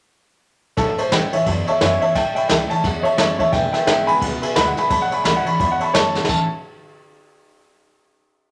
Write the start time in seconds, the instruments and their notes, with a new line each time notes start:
0.77 upright bass A1, steel-string acoustic guitar A2, upright piano A4, honky-tonk piano C#5 E5 A5, kick, snare, ride
0.98 upright piano C5, honky-tonk piano C#5 E5 A5, muted upright bass stroke, ride
1.11 upright bass C#2, steel-string acoustic guitar E3 A3 C#4 E4, honky-tonk piano C#5 E5 F#5, upright piano G5, snare, ride
1.32 upright bass D2, steel-string acoustic guitar C#4 E4, honky-tonk piano C#5 E5 G#5, upright piano C#5 E5, ride
1.46 steel-string acoustic guitar E2, upright bass F#2, honky-tonk piano C#5 E5 A5, kick, ride
1.64 honky-tonk piano C#5, upright piano C#5 D#5, muted upright bass stroke, ride
1.68 honky-tonk piano E5 A5, upright piano E5
1.81 upright bass F#2, steel-string acoustic guitar E3 A3 C#4 E4, honky-tonk piano C#5 E5 G#5, upright piano C#5 E5, snare, ride
2.01 upright piano C#5 E5, honky-tonk piano C#5 E5 A5, ride
2.15 upright bass A1, steel-string acoustic guitar A2, honky-tonk piano C#5 E5 A5, upright piano E5 G5, kick, snare, ride
2.35 upright bass C#2, honky-tonk piano C#5 E5 B5, upright piano E5 G5, ride
2.48 upright bass C#2, steel-string acoustic guitar E3 A3 C#4 E4, honky-tonk piano C#5 E5 A5, upright piano E5 G5, snare, ride
2.70 steel-string acoustic guitar C#4 E4, honky-tonk piano C#5 E5 A5, upright piano A5, muted upright bass stroke, ride
2.84 steel-string acoustic guitar E2, upright bass E2, honky-tonk piano C#5 E5 F#5, kick, snare, ride
2.99 upright piano C#5 D#5
3.03 honky-tonk piano C#5 E5 A5, upright piano E5, muted upright bass stroke, ride
3.17 upright bass F#2, steel-string acoustic guitar E3 A3 C#4 E4, upright piano C#5 E5, honky-tonk piano C#5 E5 A5, snare, ride
3.38 upright bass A2, steel-string acoustic guitar C#4 E4, honky-tonk piano C#5 E5 A5, upright piano C#5 E5, kick, ride
3.52 upright bass E1, steel-string acoustic guitar E2, honky-tonk piano B4 E5 G#5, upright piano E5 G5, kick, snare, ride
3.72 honky-tonk piano B4 E5 G#5, upright piano E5 G5, muted upright bass stroke, snare, ride
3.86 upright bass G#1, steel-string acoustic guitar D3 G#3 B3 E4, honky-tonk piano B4 E5 F#5, upright piano E5 G5, snare, ride
4.06 upright bass A1, honky-tonk piano B4 E5 B5, upright piano G#5 B5, ride
4.21 upright bass C#2, steel-string acoustic guitar B2, honky-tonk piano B4 E5 F#5, kick, ride
4.42 honky-tonk piano B4 E5 G#5, muted upright bass stroke, ride
4.55 upright bass D2, steel-string acoustic guitar D3 G#3 B3 E4, honky-tonk piano B4 E5 F#5, upright piano B5, snare, ride
4.67 upright piano F#5
4.76 steel-string acoustic guitar B3 E4, honky-tonk piano B4 E5 G#5, upright piano B5, snare, ride
4.90 upright bass A1, steel-string acoustic guitar A2, honky-tonk piano C#5 E5 A5, upright piano B5, kick, ride
5.02 upright piano F#5
5.11 upright bass C#2, honky-tonk piano C#5 E5 G#5, upright piano B5, ride
5.24 upright bass C#2, steel-string acoustic guitar E3 A3 C#4 E4, honky-tonk piano C#5 E5 F#5, upright piano B5, snare, ride
5.36 upright piano F#5
5.46 steel-string acoustic guitar C#4 E4, honky-tonk piano C#5 E5 B5, upright piano B5, muted upright bass stroke, ride
5.60 upright bass E2, steel-string acoustic guitar E2, honky-tonk piano C#5 E5 B5, upright piano B5, kick, ride
5.71 upright piano F#5
5.80 honky-tonk piano C#5 E5 A5, upright piano B5, muted upright bass stroke, ride
5.93 upright bass F#2, steel-string acoustic guitar E3 A3 C#4 E4, upright piano C#5 A5, honky-tonk piano C#5 E5 A5, snare, ride
6.14 upright bass A2, steel-string acoustic guitar C#4 E4, honky-tonk piano C#5 E5 F#5, snare
6.25 steel-string acoustic guitar A2, snare
6.29 upright bass A1, steel-string acoustic guitar E3 A3 C#4 E4, honky-tonk piano C#5 E5 A5, upright piano A5, kick, crash